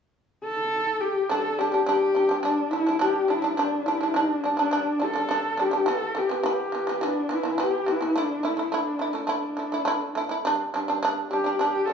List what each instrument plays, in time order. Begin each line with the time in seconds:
0.44 horsehead fiddle A4
1.01 horsehead fiddle G4
1.29 shamisen G3 D4, horsehead fiddle A4
1.58 shamisen G3 D4, horsehead fiddle G4
1.72 shamisen G3 D4
1.86 shamisen G3 D4, horsehead fiddle G4
2.15 shamisen G3 D4
2.29 shamisen G3 D4
2.43 shamisen G3 D4, horsehead fiddle D4
2.71 shamisen G3 D4, horsehead fiddle E4
2.87 shamisen G3 D4
2.99 shamisen G3 D4, horsehead fiddle G4
3.28 shamisen G3 D4, horsehead fiddle E4
3.42 shamisen G3 D4
3.57 shamisen G3 D4, horsehead fiddle D4
3.86 shamisen G3 D4, horsehead fiddle E4
4.01 shamisen G3 D4
4.14 shamisen G3 D4, horsehead fiddle D4
4.44 shamisen G3 D4
4.57 shamisen G3 D4, horsehead fiddle D4
4.71 shamisen G3 D4
5.00 shamisen G3 D4
5.04 horsehead fiddle A4
5.14 shamisen G3 D4
5.29 shamisen G3 D4
5.57 shamisen G3 D4, horsehead fiddle G4
5.71 shamisen G3 D4
5.86 shamisen E3 B3, horsehead fiddle A4
6.15 shamisen E3 B3, horsehead fiddle G4
6.29 shamisen E3 B3
6.43 shamisen E3 B3
6.48 horsehead fiddle G4
6.72 shamisen E3 B3
6.87 shamisen E3 B3
7.01 shamisen E3 B3, horsehead fiddle D4
7.29 shamisen E3 B3
7.34 horsehead fiddle E4
7.43 shamisen E3 B3
7.58 shamisen E3 B3
7.62 horsehead fiddle G4
7.86 shamisen E3 B3
7.91 horsehead fiddle E4
8.01 shamisen E3 B3
8.16 shamisen A3 E4, horsehead fiddle D4
8.43 shamisen A3 E4
8.47 horsehead fiddle E4
8.57 shamisen A3 E4
8.70 shamisen A3, horsehead fiddle E4
8.74 horsehead fiddle D4, shamisen E4
8.99 shamisen A3 E4
9.13 shamisen A3 E4
9.20 horsehead fiddle D4
9.27 shamisen A3 E4
9.57 shamisen A3 E4
9.72 shamisen A3 E4
9.85 shamisen A3 E4
10.15 shamisen A3 E4
10.29 shamisen A3 E4
10.45 shamisen G3 D4
10.74 shamisen G3 D4
10.88 shamisen G3 D4
11.03 shamisen G3 D4
11.31 shamisen G3 D4, horsehead fiddle G4
11.44 shamisen G3 D4
11.59 shamisen G3 D4, horsehead fiddle G4
11.86 shamisen G3, horsehead fiddle A4
11.90 shamisen D4